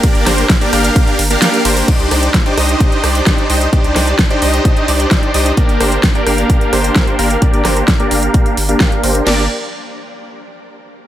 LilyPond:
<<
  \new Staff \with { instrumentName = "Supersaw synth" } { \time 4/4 \key g \minor \tempo 4 = 130 <bes d' g' bes'>8 <bes d' g' bes' c''>8 r16 <bes d' g' bes' d''>16 <bes d' g' bes' f''>4 r16 <bes d' g' bes' f''>8. <bes d' g' bes' c''>8 | <d' ees' g' c'' d''>8 <d' ees' g' c'' d''>8 r16 <d' ees' g' c'' d''>16 <d' ees' g' c'' ees''>4 <d' ees' g' c'' d''>4 <d' ees' g' c'' ees''>8 | <d' ees' g' c'' d''>8 <d' ees' g' c'' d''>8 r16 <d' ees' g' c'' d''>16 <d' ees' g' c'' ees''>4 <d' ees' g' c'' d''>4 <d' ees' g' c'' ees''>8 | <bes d' g' bes' d''>8 <bes d' g' bes' c''>8 r16 <bes d' g' bes' d''>16 <bes d' g' bes' f''>4 <bes d' g' bes' c''>4 <bes d' g' bes' f''>8 |
<bes d' g' bes' d''>8 <bes d' g' bes' c''>8 r16 <bes d' g' bes' d''>16 <bes d' g' bes' f''>4 r16 <bes d' g' bes' f''>8. <bes d' g' bes' c''>8 | <bes d' g' bes' d''>8 r2. r8 | }
  \new Staff \with { instrumentName = "Sub bass" } { \clef bass \time 4/4 \key g \minor r16 g,,16 g,,8 r8 g,,8 r8 g,,8 r8 g,,8 | r16 c,16 c,8 r8 c,8 r8 c,8 r8 c,8 | r16 c,16 c,8 r8 c,8 r8 c,8 r8 c,8 | r16 g,,16 g,,8 r8 g,,8 r8 g,,8 r8 g,,8 |
r16 g,,16 g,,8 r8 g,,8 r8 g,,8 r8 g,,8 | g,,8 r2. r8 | }
  \new DrumStaff \with { instrumentName = "Drums" } \drummode { \time 4/4 <hh bd cymr>16 hh16 <hho cymr ss sn>16 hh16 <hh bd cymr sn>16 hh16 <hho cymr ss>16 hh16 <hh bd cymr>16 hh16 <hho cymr>16 hh16 <hh cymr sn>16 hh16 <hho cymr>16 hho16 | <cymc hh bd>16 hh16 <hho ss>16 hh16 <hh bd sn>16 hh16 <hho ss>16 hh16 <hh bd>16 hh16 <hho ss>16 hh16 <hh bd sn>16 hh16 hho16 hh16 | <hh bd>16 hh16 <hho ss sn>16 hh16 <hh bd sn>16 hh16 hho16 hh16 <hh bd>16 hh16 hho16 hh16 <hh bd sn>16 hh16 hho16 hh16 | <hh bd>16 hh16 <hho ss>16 hh16 <hh bd sn>16 hh16 <hho ss>16 hh16 <hh bd>16 hh16 <hho ss>16 hh16 <hh bd sn>16 hh16 hho16 hh16 |
<hh bd>16 hh16 <hho ss sn>16 hh16 <hh bd sn>16 hh16 hho16 hh16 <hh bd>16 hh16 hho16 hh16 <hh bd sn>16 hh16 hho16 hh16 | <cymc sn>4 r4 r4 r4 | }
>>